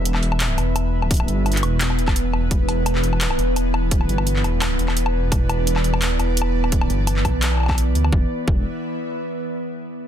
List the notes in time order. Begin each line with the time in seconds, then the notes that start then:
Already playing: E1 E3 B3 B4 E5
0.05 closed hi-hat
0.15 clap, low woodblock
0.23 E1, closed hi-hat
0.32 low woodblock
0.40 clap, closed hi-hat
0.58 E1, closed hi-hat, low woodblock
0.76 closed hi-hat, low woodblock
1.02 low woodblock
1.11 kick, closed hi-hat
1.14 closed hi-hat
1.17 closed hi-hat, low woodblock
1.28 G1, closed hi-hat
1.46 closed hi-hat, low woodblock
1.52 clap, closed hi-hat
1.57 closed hi-hat
1.63 E1, closed hi-hat, low woodblock
1.81 clap, closed hi-hat
1.90 low woodblock
1.99 closed hi-hat
2.08 kick, clap, low woodblock
2.16 closed hi-hat
2.33 low woodblock
2.51 E1, kick, closed hi-hat
2.69 closed hi-hat, low woodblock
2.86 closed hi-hat, low woodblock
2.95 clap
3.04 E1, closed hi-hat
3.13 low woodblock
3.21 clap, closed hi-hat
3.31 low woodblock
3.39 E1, closed hi-hat
3.56 closed hi-hat, low woodblock
3.74 low woodblock
3.88 D#1, kick, closed hi-hat
4.01 low woodblock
4.09 G1, closed hi-hat
4.18 low woodblock
4.26 D5, closed hi-hat
4.36 clap
4.44 E1, closed hi-hat, low woodblock
4.62 clap, closed hi-hat, low woodblock
4.79 E1, closed hi-hat
4.88 clap, low woodblock
4.97 closed hi-hat
5.06 low woodblock
5.32 E1, kick, closed hi-hat, low woodblock
5.49 closed hi-hat, low woodblock
5.67 closed hi-hat
5.76 clap, low woodblock
5.84 E1, closed hi-hat
5.94 low woodblock
6.02 clap, closed hi-hat
6.20 E1, closed hi-hat, low woodblock
6.37 closed hi-hat
6.42 low woodblock
6.64 low woodblock
6.72 kick, closed hi-hat
6.81 low woodblock
6.90 G1, closed hi-hat
7.07 closed hi-hat, low woodblock
7.16 clap
7.25 B1, kick, closed hi-hat, low woodblock
7.42 clap, closed hi-hat
7.52 low woodblock
7.54 low woodblock
7.57 low woodblock
7.60 low woodblock
7.63 low woodblock
7.66 kick, clap, low woodblock
7.70 low woodblock
7.72 low woodblock
7.75 closed hi-hat, low woodblock
7.95 D2, closed hi-hat
8.04 low woodblock
8.13 E1 E3, kick
8.18 B3
8.24 B4
8.29 E5
8.48 E1, kick